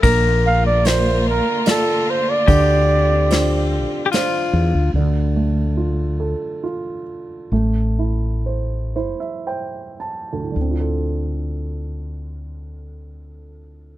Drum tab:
RD |x-x-x-|x-x-x-|------|------|
SD |--o-o-|--o-o-|------|------|
BD |o-----|o-----|------|------|

RD |------|
SD |------|
BD |------|